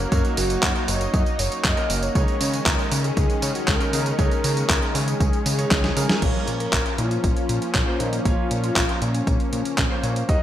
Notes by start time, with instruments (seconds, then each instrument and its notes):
Already playing: analog synth pad F#3 A#3
0.12 analog synth bass F#2, grand piano A#3 C#4 F#4 C#5, analog synth pad D#4, analog synth lead A#4, kick, closed hi-hat, tambourine
0.25 closed hi-hat, tambourine
0.37 analog synth bass F#1, analog synth lead F#4, open hi-hat, tambourine
0.50 closed hi-hat, tambourine
0.63 analog synth bass F#2, kick, clap, closed hi-hat, tambourine
0.76 closed hi-hat, tambourine
0.88 analog synth bass F#1, analog synth lead C#5, open hi-hat, tambourine
1.01 closed hi-hat, tambourine
1.14 analog synth bass F#2, analog synth lead D#5, kick, closed hi-hat, tambourine
1.26 closed hi-hat, tambourine
1.39 analog synth bass F#1, analog synth lead C#5, open hi-hat, tambourine
1.52 closed hi-hat, tambourine
1.65 analog synth bass F#2, analog synth lead D#5, kick, clap, closed hi-hat, tambourine
1.77 grand piano A#3 C#4 F#4 A#4, closed hi-hat, tambourine
1.90 analog synth bass F#1, open hi-hat, tambourine
2.03 analog synth lead C#5, closed hi-hat, tambourine
2.15 analog synth bass C#2, analog synth pad D#3 G#3 C#4, grand piano G#3 C#4 D#4 C#5, kick, closed hi-hat, tambourine
2.28 closed hi-hat, tambourine
2.41 analog synth bass C#3, open hi-hat, tambourine
2.54 closed hi-hat, tambourine
2.66 analog synth bass C#2, analog synth lead A#4, kick, clap, closed hi-hat, tambourine
2.79 closed hi-hat, tambourine
2.92 analog synth bass C#3, open hi-hat, tambourine
3.04 analog synth lead G#4, closed hi-hat, tambourine
3.17 analog synth bass C#2, kick, closed hi-hat, tambourine
3.30 closed hi-hat, tambourine
3.42 analog synth bass C#3, open hi-hat, tambourine
3.55 analog synth lead F#4, closed hi-hat, tambourine
3.68 analog synth bass C#2, analog synth lead A#4, kick, clap, closed hi-hat, tambourine
3.81 grand piano G#3 C#4 D#4 A#4, closed hi-hat, tambourine
3.93 analog synth bass C#3, open hi-hat, tambourine
4.06 closed hi-hat, tambourine
4.19 analog synth bass C#2, grand piano G#3 C#4 D#4 C#5, analog synth lead A#4, kick, closed hi-hat, tambourine
4.31 closed hi-hat, tambourine
4.44 analog synth bass C#3, open hi-hat, tambourine
4.57 closed hi-hat, tambourine
4.70 analog synth bass C#2, kick, clap, closed hi-hat, tambourine
4.82 closed hi-hat, tambourine
4.95 analog synth bass C#3, analog synth lead G#4, open hi-hat, tambourine
5.08 closed hi-hat, tambourine
5.20 analog synth bass C#2, kick, closed hi-hat, tambourine
5.33 closed hi-hat, tambourine
5.46 analog synth bass C#3, open hi-hat, tambourine
5.59 grand piano G#3 C#4 D#4 C#5, closed hi-hat, tambourine
5.71 analog synth bass C#2, kick, snare, clap, closed hi-hat, tambourine
5.84 snare, closed hi-hat, tambourine
5.97 analog synth bass C#3, grand piano G#3 C#4 D#4 A#4, analog synth lead G#4, open hi-hat, tambourine
6.09 snare, closed hi-hat
6.22 analog synth bass A#1, analog synth pad F3 A#3 C#4, grand piano A#3 C#4 F4 C#5, analog synth lead A#4, kick, closed hi-hat, crash
6.48 analog synth bass A#2, closed hi-hat
6.60 analog synth lead A#4, closed hi-hat
6.73 analog synth bass A#1, kick, clap, closed hi-hat
6.86 closed hi-hat
6.98 analog synth bass A#2, analog synth lead F4, closed hi-hat
7.11 closed hi-hat
7.24 analog synth bass A#1, kick, closed hi-hat
7.37 closed hi-hat
7.49 analog synth bass A#2, closed hi-hat
7.62 closed hi-hat
7.75 analog synth bass A#1, kick, clap, closed hi-hat
7.87 grand piano A#3 C#4 F4 C5
8.00 analog synth bass A#2, analog synth lead D#4, closed hi-hat
8.13 closed hi-hat
8.25 analog synth bass A#1, grand piano A#3 C#4 F4 C#5, analog synth lead F4, kick, closed hi-hat
8.51 analog synth bass A#2, closed hi-hat
8.64 analog synth lead F4, closed hi-hat
8.76 analog synth bass A#1, kick, clap, closed hi-hat
8.89 closed hi-hat
9.02 analog synth bass A#2, analog synth lead C#4, closed hi-hat
9.15 closed hi-hat
9.27 analog synth bass A#1, kick, closed hi-hat
9.40 closed hi-hat
9.53 analog synth bass A#2, analog synth lead C#4, closed hi-hat
9.65 closed hi-hat
9.78 analog synth bass A#1, kick, clap, closed hi-hat
9.91 grand piano A#3 C#4 F4 C5
10.03 analog synth bass A#2, analog synth lead C#5, closed hi-hat
10.16 closed hi-hat
10.29 analog synth bass D#2, analog synth pad F#3 D#4, grand piano A#3 D#4 F#4 D#5, analog synth lead D#5, kick, closed hi-hat